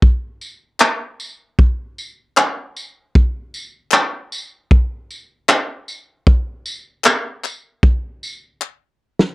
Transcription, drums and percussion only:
0.02 kick
0.41 tambourine
0.80 clap
1.20 tambourine
1.59 kick
1.98 tambourine
2.37 clap
2.76 tambourine
3.15 kick
3.54 tambourine
3.91 clap
3.94 clap
4.32 tambourine
4.71 kick
5.11 tambourine
5.49 clap
5.88 tambourine
6.27 kick
6.66 tambourine
7.04 clap
7.06 clap
7.44 clap, tambourine
7.83 kick
8.23 tambourine
8.61 clap
9.19 snare

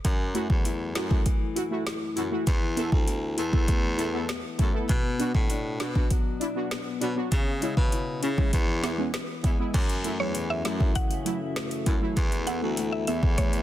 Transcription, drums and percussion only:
0.05 kick, closed hi-hat
0.35 closed hi-hat
0.50 kick
0.65 closed hi-hat
0.95 snare, closed hi-hat
1.11 kick
1.26 kick, closed hi-hat
1.56 closed hi-hat
1.87 snare, closed hi-hat
2.17 closed hi-hat
2.47 kick, closed hi-hat
2.77 closed hi-hat
2.92 kick
3.08 closed hi-hat
3.38 closed hi-hat
3.53 kick
3.68 kick, closed hi-hat
3.99 closed hi-hat
4.29 snare, closed hi-hat
4.59 kick, closed hi-hat
4.89 kick, closed hi-hat
5.20 closed hi-hat
5.35 kick
5.50 closed hi-hat
5.80 snare, closed hi-hat
5.95 kick
6.10 kick, closed hi-hat
6.41 closed hi-hat
6.71 snare, closed hi-hat
7.01 closed hi-hat
7.32 kick, closed hi-hat
7.62 closed hi-hat
7.77 kick
7.92 closed hi-hat
8.23 closed hi-hat
8.38 kick
8.53 kick, closed hi-hat
8.84 snare, closed hi-hat
9.14 cross-stick, snare, closed hi-hat
9.44 kick, closed hi-hat
9.74 kick, closed hi-hat, crash
9.89 closed hi-hat
10.04 closed hi-hat
10.35 closed hi-hat
10.65 snare, closed hi-hat
10.80 kick
10.95 kick, closed hi-hat
11.11 closed hi-hat
11.26 closed hi-hat
11.56 cross-stick, snare, closed hi-hat
11.71 closed hi-hat
11.86 kick, closed hi-hat
12.17 kick, closed hi-hat
12.32 closed hi-hat
12.47 closed hi-hat
12.77 closed hi-hat
13.07 closed hi-hat
13.23 kick
13.38 kick, closed hi-hat
13.53 closed hi-hat

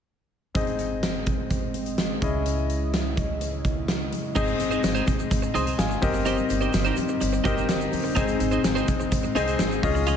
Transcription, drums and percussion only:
0.55 kick, closed hi-hat
0.67 closed hi-hat
0.79 closed hi-hat
1.03 snare, closed hi-hat
1.26 kick, closed hi-hat
1.50 kick, closed hi-hat
1.74 closed hi-hat
1.86 closed hi-hat
1.98 snare, closed hi-hat
2.22 kick, closed hi-hat
2.46 closed hi-hat
2.70 closed hi-hat
2.94 snare, closed hi-hat
3.17 kick, closed hi-hat
3.41 closed hi-hat
3.65 kick, closed hi-hat
3.88 snare, closed hi-hat
4.13 closed hi-hat
4.36 kick, crash, shaker
4.47 shaker
4.60 closed hi-hat, shaker
4.71 shaker
4.84 snare, closed hi-hat, shaker
4.95 shaker
5.07 kick, closed hi-hat, shaker
5.19 shaker
5.31 kick, closed hi-hat, shaker
5.43 shaker
5.55 closed hi-hat, shaker
5.67 closed hi-hat, shaker
5.79 snare, closed hi-hat, shaker
5.91 shaker
6.02 kick, open hi-hat, shaker
6.14 shaker
6.26 closed hi-hat, shaker
6.37 shaker
6.50 closed hi-hat, shaker
6.61 shaker
6.73 snare, closed hi-hat, shaker
6.85 shaker
6.96 closed hi-hat, shaker
7.08 shaker
7.21 closed hi-hat, shaker
7.33 shaker
7.45 kick, closed hi-hat, shaker
7.58 shaker
7.69 snare, closed hi-hat, shaker
7.81 shaker
7.93 open hi-hat, shaker
8.05 shaker
8.16 kick, closed hi-hat, shaker
8.28 closed hi-hat, shaker
8.40 closed hi-hat, shaker
8.52 shaker
8.64 snare, closed hi-hat, shaker
8.77 shaker
8.88 kick, closed hi-hat, shaker
9.00 shaker
9.12 kick, closed hi-hat, shaker
9.24 shaker
9.36 closed hi-hat, shaker
9.48 closed hi-hat, shaker
9.59 snare, closed hi-hat, shaker
9.72 shaker
9.83 kick, open hi-hat, shaker
9.96 shaker
10.07 closed hi-hat, shaker

